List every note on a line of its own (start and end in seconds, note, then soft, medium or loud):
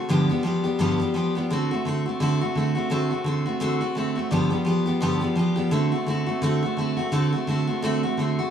0.09 0.29 G2 medium
0.09 0.30 D3 medium
0.09 0.30 F3 medium
0.09 0.30 G3 medium
0.09 0.29 B3 medium
0.09 0.28 G4 medium
0.29 0.42 F3 soft
0.29 0.43 G3 soft
0.29 0.44 B3 medium
0.29 0.44 G4 medium
0.43 0.64 F3 medium
0.43 0.65 G3 medium
0.43 0.64 B3 medium
0.43 0.62 G4 medium
0.64 0.78 F3 soft
0.64 0.79 G3 medium
0.64 0.80 B3 medium
0.64 0.79 G4 medium
0.79 1.00 G2 medium
0.79 1.00 D3 medium
0.79 1.00 F3 medium
0.79 1.00 G3 loud
0.79 1.00 B3 loud
0.79 0.98 G4 medium
0.99 1.13 F3 medium
0.99 1.14 G3 medium
0.99 1.15 B3 medium
0.99 1.15 G4 medium
1.14 1.35 F3 medium
1.14 1.35 G3 medium
1.14 1.35 B3 medium
1.14 1.34 G4 medium
1.35 1.50 F3 medium
1.35 1.51 G3 medium
1.35 1.51 B3 medium
1.35 1.50 G4 medium
1.50 1.71 D3 medium
1.50 1.71 A3 medium
1.50 1.72 C4 medium
1.50 1.70 F#4 medium
1.71 1.85 A3 soft
1.71 1.86 C4 medium
1.71 1.85 F#4 medium
1.85 2.06 D3 medium
1.85 2.06 A3 medium
1.85 2.06 C4 medium
1.85 2.04 F#4 medium
2.06 2.20 A3 soft
2.06 2.21 C4 soft
2.06 2.20 F#4 medium
2.20 2.41 D3 medium
2.20 2.41 A3 medium
2.20 2.42 C4 medium
2.20 2.40 F#4 loud
2.41 2.56 A3 soft
2.41 2.57 C4 medium
2.41 2.56 F#4 medium
2.55 2.76 D3 medium
2.55 2.77 A3 medium
2.55 2.75 C4 medium
2.55 2.74 F#4 medium
2.75 2.90 A3 medium
2.75 2.90 C4 medium
2.75 2.90 F#4 medium
2.90 3.11 D3 medium
2.90 3.11 A3 medium
2.90 3.11 C4 loud
2.90 3.09 F#4 loud
3.11 3.25 A3 soft
3.11 3.26 C4 medium
3.11 3.26 F#4 medium
3.24 3.46 D3 medium
3.24 3.47 A3 medium
3.24 3.46 C4 medium
3.24 3.44 F#4 medium
3.46 3.60 A3 medium
3.46 3.60 C4 medium
3.46 3.61 F#4 medium
3.60 3.81 D3 medium
3.60 3.82 A3 loud
3.60 3.81 C4 medium
3.60 3.79 F#4 loud
3.81 3.95 A3 soft
3.81 3.96 C4 medium
3.81 3.96 F#4 medium
3.95 4.16 D3 medium
3.95 4.17 A3 medium
3.95 4.16 C4 medium
3.95 4.14 F#4 medium
4.15 4.32 A3 soft
4.15 4.32 C4 medium
4.15 4.31 F#4 medium
4.31 4.52 G2 medium
4.31 4.52 D3 medium
4.31 4.52 F3 medium
4.31 4.52 G3 medium
4.31 4.51 B3 medium
4.31 4.49 G4 medium
4.50 4.63 F3 soft
4.50 4.65 G3 medium
4.50 4.66 B3 medium
4.50 4.66 G4 medium
4.65 4.86 F3 medium
4.65 4.87 G3 medium
4.65 4.86 B3 medium
4.65 4.84 G4 medium
4.86 5.00 F3 medium
4.86 5.01 G3 soft
4.86 5.01 B3 medium
4.86 5.01 G4 medium
5.01 5.22 G2 medium
5.01 5.22 D3 medium
5.01 5.22 F3 medium
5.01 5.22 G3 loud
5.01 5.21 B3 loud
5.01 5.20 G4 loud
5.21 5.34 F3 soft
5.21 5.35 G3 medium
5.21 5.37 B3 medium
5.21 5.37 G4 medium
5.35 5.57 F3 medium
5.35 5.57 G3 medium
5.35 5.56 B3 medium
5.35 5.54 G4 medium
5.56 5.71 F3 medium
5.56 5.72 G3 medium
5.56 5.72 B3 medium
5.56 5.72 G4 medium
5.71 5.92 D3 medium
5.71 5.93 A3 medium
5.71 5.93 C4 medium
5.71 5.91 F#4 medium
5.92 6.07 A3 soft
5.92 6.07 C4 medium
5.92 6.07 F#4 medium
6.06 6.28 D3 medium
6.06 6.28 A3 medium
6.06 6.27 C4 medium
6.06 6.25 F#4 medium
6.26 6.42 A3 soft
6.26 6.42 C4 medium
6.26 6.42 F#4 medium
6.42 6.63 D3 medium
6.42 6.63 A3 loud
6.42 6.64 C4 medium
6.42 6.61 F#4 loud
6.63 6.77 A3 medium
6.63 6.78 C4 medium
6.63 6.78 F#4 medium
6.77 6.98 D3 medium
6.77 6.99 A3 medium
6.77 6.98 C4 medium
6.77 6.95 F#4 medium
6.97 7.11 A3 medium
6.97 7.12 C4 medium
6.97 7.12 F#4 medium
7.12 7.33 D3 medium
7.12 7.34 A3 medium
7.12 7.33 C4 loud
7.12 7.31 F#4 medium
7.32 7.47 A3 soft
7.32 7.48 C4 medium
7.32 7.48 F#4 medium
7.47 7.68 D3 medium
7.47 7.69 A3 medium
7.47 7.68 C4 medium
7.47 7.66 F#4 medium
7.67 7.82 A3 soft
7.67 7.83 C4 medium
7.67 7.83 F#4 medium
7.82 8.04 D3 medium
7.82 8.04 A3 loud
7.82 8.04 C4 loud
7.82 8.02 F#4 medium
8.03 8.18 A3 soft
8.03 8.19 C4 medium
8.03 8.19 F#4 medium
8.17 8.39 D3 medium
8.17 8.40 A3 medium
8.17 8.39 C4 medium
8.17 8.38 F#4 medium
8.39 8.50 A3 medium
8.39 8.50 C4 medium
8.39 8.50 F#4 medium